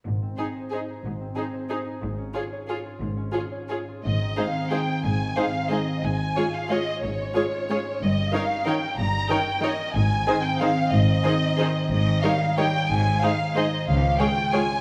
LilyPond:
<<
  \new Staff \with { instrumentName = "Violin section" } { \time 3/4 \key aes \major \tempo 4 = 182 r4 c''4 c''4 | r4 c''4 c''4 | r4 des''4 des''4 | r4 des''4 des''4 |
ees''4 f''4 g''4 | aes''4 f''4 ees''4 | aes''4. f''8 ees''4 | des''2. |
ees''4 f''4 g''4 | bes''4 g''4 ees''4 | aes''4. g''8 f''4 | ees''2. |
ees''4 f''4 g''4 | aes''4 f''4 ees''4 | f''4 g''4 aes''4 | }
  \new Staff \with { instrumentName = "Violin section" } { \time 3/4 \key aes \major r4 aes'4 aes'4 | r4 aes'4 aes'4 | r4 aes'4 aes'4 | r4 aes'4 aes'4 |
r4 <aes' c''>4 <aes' c''>4 | r4 <aes' c''>4 <aes' c''>4 | r4 <aes' des''>4 <aes' des''>4 | r4 <aes' des''>4 <aes' des''>4 |
r4 <bes' des''>4 <bes' des''>4 | r4 <bes' des''>4 <bes' des''>4 | r4 <aes' c''>4 <aes' c''>4 | r4 <aes' c''>4 <aes' c''>4 |
r4 <bes' des''>4 <bes' des''>4 | r4 <aes' c''>4 <aes' c''>4 | r4 <aes' des''>4 <aes' des''>4 | }
  \new Staff \with { instrumentName = "Viola section" } { \time 3/4 \key aes \major r4 ees'4 ees'4 | r4 ees'4 ees'4 | r4 f'4 f'4 | r4 f'4 f'4 |
r4 <aes ees'>4 <aes ees'>4 | r4 <aes ees'>4 <aes ees'>4 | r4 <aes f'>4 <aes f'>4 | r4 <aes f'>4 <aes f'>4 |
r4 <ees ees'>4 <ees ees'>4 | r4 <ees ees'>4 <ees ees'>4 | r4 <ees ees'>4 <ees ees'>4 | r4 <ees ees'>4 <ees ees'>4 |
r4 <g ees'>4 <g ees'>4 | r4 <aes ees'>4 <aes ees'>4 | r4 <aes f'>4 <aes f'>4 | }
  \new Staff \with { instrumentName = "Harp" } { \time 3/4 \key aes \major aes,8 c'8 aes'8 c''8 aes'8 ees'8 | aes,8 c'8 aes'8 c''8 aes'8 ees'8 | aes,8 des'8 aes'8 des''8 aes'8 f'8 | aes,8 des'8 aes'8 des''8 aes'8 f'8 |
aes,8 ees8 c'8 ees'8 c'8 aes'8 | aes,8 ees8 c'8 ees'8 c'8 aes'8 | aes,8 aes8 des'8 f'8 des'8 aes'8 | aes,8 aes8 des'8 f'8 des'8 aes'8 |
g,8 g8 des'8 ees'8 des'8 bes'8 | g,8 g8 des'8 ees'8 des'8 bes'8 | aes,8 ees8 c'8 ees'8 c'8 c''8 | aes,8 ees8 c'8 ees'8 c'8 c''8 |
aes,8 ees8 g8 ees'8 g8 des''8 | aes,8 ees8 aes8 ees'8 aes8 c''8 | des8 des'8 aes8 f'8 aes8 des''8 | }
  \new Staff \with { instrumentName = "Cello section" } { \clef bass \time 3/4 \key aes \major aes,4 r2 | aes,4 r2 | aes,4 r2 | aes,4 r2 |
aes,4 r2 | aes,4 r2 | aes,4 r2 | aes,4 r2 |
g,4 r2 | g,4 r2 | aes,4 r2 | aes,4 r2 |
aes,4 r2 | aes,4 r2 | des,4 r2 | }
  \new Staff \with { instrumentName = "Double bass section" } { \clef bass \time 3/4 \key aes \major aes,,4 r2 | aes,,4 r2 | aes,,4 r2 | aes,,4 r2 |
aes,,4 r2 | aes,,4 r2 | aes,,4 r2 | aes,,4 r2 |
g,,4 r2 | g,,4 r2 | aes,,4 r2 | aes,,4 r2 |
aes,,4 r2 | aes,,4 r2 | des,4 r2 | }
>>